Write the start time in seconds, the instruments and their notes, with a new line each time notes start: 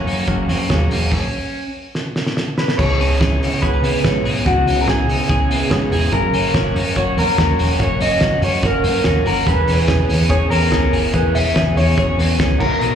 Already playing: clean electric guitar F#2 F#4, reed electric piano A#3 C#4 F#4 A#4
0.05 picked electric bass F#2, overdriven electric guitar C#3 F#3 A#3 C#4, clean electric guitar C#4, hi-hat pedal, open hi-hat
0.27 picked electric bass F#1, clean electric guitar F#3, reed electric piano A#3 C#4 F#4 A#4, kick, hi-hat pedal, open hi-hat
0.48 picked electric bass F#2, overdriven electric guitar C#3 F#3 A#3 C#4, clean electric guitar F#4, hi-hat pedal, open hi-hat
0.68 picked electric bass D#2, overdriven electric guitar C#3 F#3 A#3 C#4, reed electric piano A#3 C#4 F#4 G#4, clean electric guitar C#4, kick, snare, hi-hat pedal, open hi-hat
0.89 picked electric bass E1, clean electric guitar A#3, hi-hat pedal, open hi-hat
1.12 kick, crash
1.95 snare
2.16 snare
2.26 snare
2.37 snare
2.58 clean electric guitar B4, snare
2.68 snare
2.78 picked electric bass C#2, overdriven electric guitar C#3 G#3 B3 E4, clean electric guitar C#3 C#5, reed electric piano B3 C#4 E4 G#4, kick, crash
2.99 picked electric bass C#2, clean electric guitar C#4, hi-hat pedal, open hi-hat
3.09 overdriven electric guitar G#3 B3 E4
3.19 picked electric bass C#2, reed electric piano B3 C#4 E4 G#4, clean electric guitar G#4, kick, snare, hi-hat pedal, open hi-hat
3.29 overdriven electric guitar G#3 B3 E4
3.40 picked electric bass C#3, clean electric guitar C#4, hi-hat pedal, open hi-hat
3.61 picked electric bass C#2, reed electric piano B3 C#4 E4 G#4, clean electric guitar F#4 B4, kick, hi-hat pedal, open hi-hat
3.74 clean electric guitar G#4
3.82 overdriven electric guitar C#3 G#3 B3 E4, picked electric bass C#3, clean electric guitar B3, hi-hat pedal, open hi-hat
4.03 picked electric bass G#2, overdriven electric guitar C#3 G#3 B3 E4, reed electric piano B3 C#4 E4 B4, clean electric guitar C#4, kick, snare, hi-hat pedal, open hi-hat
4.24 picked electric bass B1, overdriven electric guitar C#3 G#3 B3 E4, clean electric guitar G#4, hi-hat pedal, open hi-hat
4.45 picked electric bass C#2, overdriven electric guitar C#3 G#3 B3 E4, clean electric guitar C#3 F#4, reed electric piano B3 C#4 E4 G#4, kick, hi-hat pedal, open hi-hat
4.65 picked electric bass C#2, clean electric guitar C#4, hi-hat pedal, open hi-hat
4.76 overdriven electric guitar G#3 B3 E4
4.81 clean electric guitar A#4
4.87 picked electric bass C#2, reed electric piano B3 C#4 E4 G#4, clean electric guitar G#4, kick, snare, hi-hat pedal, open hi-hat
4.97 overdriven electric guitar G#3 B3 E4
5.07 picked electric bass C#3, clean electric guitar C#4, hi-hat pedal, open hi-hat
5.28 picked electric bass C#2, reed electric piano B3 C#4 E4 G#4, clean electric guitar G#4, kick, hi-hat pedal, open hi-hat
5.49 overdriven electric guitar C#3 G#3 B3 E4, picked electric bass C#3, clean electric guitar B3, hi-hat pedal, open hi-hat
5.70 picked electric bass G#2, overdriven electric guitar C#3 G#3 B3 E4, reed electric piano B3 C#4 E4 G#4, clean electric guitar C#4, kick, snare, hi-hat pedal, open hi-hat
5.91 picked electric bass E1, overdriven electric guitar C#3 G#3 B3 E4, clean electric guitar G#4, hi-hat pedal, open hi-hat
6.12 picked electric bass F#1, clean electric guitar F#2 A#4, overdriven electric guitar F#3 A#3 C#4 F#4, reed electric piano A#3 C#4 F#4 A#4, kick, hi-hat pedal, open hi-hat
6.33 picked electric bass F#1, clean electric guitar C#4, hi-hat pedal, open hi-hat
6.44 overdriven electric guitar A#3 C#4 F#4
6.54 picked electric bass F#1, reed electric piano A#3 C#4 F#4 A#4, clean electric guitar F#4, kick, snare, hi-hat pedal, open hi-hat
6.65 overdriven electric guitar A#3 C#4 F#4
6.75 picked electric bass F#2, clean electric guitar C#4, hi-hat pedal, open hi-hat
6.95 picked electric bass F#1, reed electric piano A#3 C#4 F#4 C#5, clean electric guitar F#4 C#5, kick, hi-hat pedal, open hi-hat
7.17 picked electric bass F#2, overdriven electric guitar F#3 A#3 C#4 F#4, clean electric guitar A#3 A#4, hi-hat pedal, open hi-hat
7.37 picked electric bass D#2, overdriven electric guitar F#3 A#3 C#4, reed electric piano A#3 C#4 F#4 A#4, clean electric guitar C#4, kick, snare, hi-hat pedal, open hi-hat
7.42 overdriven electric guitar F#4
7.58 picked electric bass E1, overdriven electric guitar F#3 A#3 C#4 F#4, clean electric guitar F#4, hi-hat pedal, open hi-hat
7.79 picked electric bass F#1, clean electric guitar F#2 C#5, overdriven electric guitar F#3 A#3 C#4 F#4, reed electric piano A#3 C#4 F#4 A#4, kick, hi-hat pedal, open hi-hat
8.01 picked electric bass F#1, clean electric guitar C#4 D#5, hi-hat pedal, open hi-hat
8.11 overdriven electric guitar A#3 C#4 F#4
8.20 picked electric bass F#1, reed electric piano A#3 C#4 F#4 A#4, clean electric guitar F#4, kick, snare, hi-hat pedal, open hi-hat
8.31 overdriven electric guitar A#3 C#4 F#4
8.42 picked electric bass F#2, clean electric guitar C#4 C#5, hi-hat pedal, open hi-hat
8.62 picked electric bass F#1, reed electric piano A#3 C#4 F#4 A#4, clean electric guitar F#4 A#4, kick, hi-hat pedal, open hi-hat
8.84 picked electric bass F#2, overdriven electric guitar F#3 A#3 C#4 F#4, clean electric guitar A#3, hi-hat pedal, open hi-hat
9.04 picked electric bass D#2, overdriven electric guitar F#3 A#3 C#4 F#4, reed electric piano A#3 C#4 F#4 A#4, clean electric guitar C#4, kick, snare, hi-hat pedal, open hi-hat
9.26 picked electric bass F#1, overdriven electric guitar F#3 A#3 C#4 F#4, clean electric guitar F#4 A#4, hi-hat pedal, open hi-hat
9.46 picked electric bass E1, overdriven electric guitar E3 B3 C#4 G#4, clean electric guitar E3 B4, reed electric piano B3 C#4 E4 G#4, kick, hi-hat pedal, open hi-hat
9.67 picked electric bass E1, clean electric guitar C#4, hi-hat pedal, open hi-hat
9.77 overdriven electric guitar B3 C#4 G#4
9.88 picked electric bass E1, reed electric piano B3 C#4 E4 G#4, clean electric guitar G#4, kick, snare, hi-hat pedal, open hi-hat
9.99 overdriven electric guitar B3 C#4 G#4
10.08 picked electric bass E2, clean electric guitar C#4, hi-hat pedal, open hi-hat
10.29 picked electric bass E1, reed electric piano B3 C#4 E4 G#4, clean electric guitar G#4 C#5, kick, hi-hat pedal, open hi-hat
10.50 picked electric bass E2, overdriven electric guitar E3 B3 C#4 G#4, clean electric guitar B3 A#4, hi-hat pedal, open hi-hat
10.71 picked electric bass C#2, overdriven electric guitar E3 B3 C#4 G#4, reed electric piano B3 C#4 E4 G#4, clean electric guitar C#4, kick, snare, hi-hat pedal, open hi-hat
10.91 picked electric bass F#1, overdriven electric guitar E3 B3 C#4, clean electric guitar G#4, hi-hat pedal, open hi-hat
10.96 overdriven electric guitar G#4
11.12 picked electric bass E1, clean electric guitar E3 B4, overdriven electric guitar E3 B3 C#4 G#4, reed electric piano B3 C#4 E4 G#4, kick, hi-hat pedal, open hi-hat
11.34 picked electric bass E1, clean electric guitar C#4 E5, hi-hat pedal, open hi-hat
11.46 overdriven electric guitar B3 C#4 G#4
11.54 picked electric bass E1, reed electric piano B3 C#4 E4 G#4, clean electric guitar G#4, kick, snare, hi-hat pedal, open hi-hat
11.67 overdriven electric guitar B3 C#4 G#4
11.76 picked electric bass E2, clean electric guitar C#4 C#5, hi-hat pedal, open hi-hat
11.97 picked electric bass E1, reed electric piano B3 C#4 E4 F#4, clean electric guitar G#4 C#5, kick, hi-hat pedal, open hi-hat
12.17 picked electric bass E2, overdriven electric guitar E3 B3 C#4 G#4, clean electric guitar B3, hi-hat pedal, open hi-hat
12.38 picked electric bass C#2, overdriven electric guitar E3 B3 C#4 G#4, reed electric piano B3 C#4 E4 G#4, clean electric guitar C#4, kick, snare, hi-hat pedal, open hi-hat
12.59 picked electric bass B1, clean electric guitar B2 A#4, overdriven electric guitar F#3 A#3 D#4 F#4, reed electric piano B3 D#4 F#4 A#4, kick, crash
12.80 overdriven electric guitar B2 F#3 A#3 D#4 F#4, clean electric guitar B2, hi-hat pedal, open hi-hat